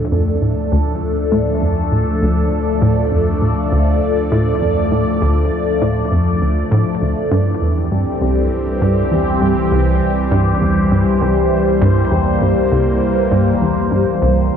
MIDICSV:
0, 0, Header, 1, 4, 480
1, 0, Start_track
1, 0, Tempo, 600000
1, 93, Time_signature, 4, 2, 24, 8
1, 11655, End_track
2, 0, Start_track
2, 0, Title_t, "Analog synth pad"
2, 0, Program_c, 0, 89
2, 0, Note_on_c, 0, 53, 67
2, 0, Note_on_c, 0, 57, 89
2, 0, Note_on_c, 0, 62, 71
2, 0, Note_on_c, 0, 69, 89
2, 232, Note_on_c, 0, 74, 80
2, 5851, Note_off_c, 0, 57, 0
2, 5852, Note_off_c, 0, 53, 0
2, 5853, Note_on_c, 0, 52, 77
2, 6117, Note_on_c, 0, 67, 85
2, 6181, Note_on_c, 0, 60, 65
2, 6323, Note_on_c, 0, 55, 91
2, 7272, Note_off_c, 0, 69, 0
2, 7393, Note_off_c, 0, 74, 0
2, 7533, Note_off_c, 0, 62, 0
2, 7825, Note_on_c, 0, 72, 87
2, 9230, Note_on_c, 0, 58, 73
2, 9376, Note_off_c, 0, 60, 0
2, 11612, Note_off_c, 0, 55, 0
2, 11612, Note_off_c, 0, 58, 0
2, 11612, Note_off_c, 0, 67, 0
2, 11612, Note_on_c, 0, 50, 84
2, 11613, Note_off_c, 0, 52, 0
2, 11655, Note_off_c, 0, 50, 0
2, 11655, Note_off_c, 0, 72, 0
2, 11655, End_track
3, 0, Start_track
3, 0, Title_t, "Analog synth bass"
3, 0, Program_c, 1, 38
3, 94, Note_on_c, 1, 41, 84
3, 322, Note_off_c, 1, 41, 0
3, 334, Note_on_c, 1, 45, 69
3, 439, Note_off_c, 1, 45, 0
3, 575, Note_on_c, 1, 38, 103
3, 802, Note_off_c, 1, 38, 0
3, 1053, Note_on_c, 1, 45, 97
3, 1229, Note_off_c, 1, 45, 0
3, 1294, Note_on_c, 1, 41, 72
3, 1522, Note_off_c, 1, 41, 0
3, 1533, Note_on_c, 1, 45, 77
3, 1639, Note_off_c, 1, 45, 0
3, 1774, Note_on_c, 1, 38, 100
3, 2002, Note_off_c, 1, 38, 0
3, 2253, Note_on_c, 1, 45, 98
3, 2429, Note_off_c, 1, 45, 0
3, 2494, Note_on_c, 1, 41, 72
3, 2722, Note_off_c, 1, 41, 0
3, 2734, Note_on_c, 1, 45, 73
3, 2839, Note_off_c, 1, 45, 0
3, 2974, Note_on_c, 1, 38, 97
3, 3202, Note_off_c, 1, 38, 0
3, 3454, Note_on_c, 1, 45, 104
3, 3629, Note_off_c, 1, 45, 0
3, 3693, Note_on_c, 1, 41, 75
3, 3921, Note_off_c, 1, 41, 0
3, 3934, Note_on_c, 1, 45, 82
3, 4039, Note_off_c, 1, 45, 0
3, 4174, Note_on_c, 1, 38, 101
3, 4401, Note_off_c, 1, 38, 0
3, 4653, Note_on_c, 1, 45, 95
3, 4829, Note_off_c, 1, 45, 0
3, 4893, Note_on_c, 1, 41, 78
3, 5121, Note_off_c, 1, 41, 0
3, 5133, Note_on_c, 1, 38, 71
3, 5309, Note_off_c, 1, 38, 0
3, 5372, Note_on_c, 1, 45, 100
3, 5478, Note_off_c, 1, 45, 0
3, 5612, Note_on_c, 1, 38, 75
3, 5718, Note_off_c, 1, 38, 0
3, 5851, Note_on_c, 1, 43, 97
3, 6028, Note_off_c, 1, 43, 0
3, 6092, Note_on_c, 1, 40, 75
3, 6320, Note_off_c, 1, 40, 0
3, 6332, Note_on_c, 1, 43, 71
3, 6438, Note_off_c, 1, 43, 0
3, 6572, Note_on_c, 1, 36, 97
3, 6800, Note_off_c, 1, 36, 0
3, 7052, Note_on_c, 1, 43, 89
3, 7229, Note_off_c, 1, 43, 0
3, 7291, Note_on_c, 1, 40, 74
3, 7520, Note_off_c, 1, 40, 0
3, 7533, Note_on_c, 1, 43, 73
3, 7639, Note_off_c, 1, 43, 0
3, 7772, Note_on_c, 1, 36, 99
3, 8001, Note_off_c, 1, 36, 0
3, 8251, Note_on_c, 1, 43, 101
3, 8428, Note_off_c, 1, 43, 0
3, 8492, Note_on_c, 1, 40, 71
3, 8721, Note_off_c, 1, 40, 0
3, 8732, Note_on_c, 1, 43, 77
3, 8838, Note_off_c, 1, 43, 0
3, 8972, Note_on_c, 1, 36, 99
3, 9200, Note_off_c, 1, 36, 0
3, 9452, Note_on_c, 1, 43, 102
3, 9629, Note_off_c, 1, 43, 0
3, 9693, Note_on_c, 1, 40, 81
3, 9921, Note_off_c, 1, 40, 0
3, 9932, Note_on_c, 1, 43, 71
3, 10038, Note_off_c, 1, 43, 0
3, 10173, Note_on_c, 1, 36, 92
3, 10401, Note_off_c, 1, 36, 0
3, 10651, Note_on_c, 1, 43, 91
3, 10828, Note_off_c, 1, 43, 0
3, 10892, Note_on_c, 1, 40, 73
3, 11121, Note_off_c, 1, 40, 0
3, 11133, Note_on_c, 1, 43, 77
3, 11239, Note_off_c, 1, 43, 0
3, 11374, Note_on_c, 1, 36, 96
3, 11601, Note_off_c, 1, 36, 0
3, 11655, End_track
4, 0, Start_track
4, 0, Title_t, "Sub bass"
4, 0, Program_c, 2, 38
4, 0, Note_on_c, 2, 38, 82
4, 5829, Note_off_c, 2, 38, 0
4, 5852, Note_on_c, 2, 36, 84
4, 11589, Note_off_c, 2, 36, 0
4, 11655, End_track
0, 0, End_of_file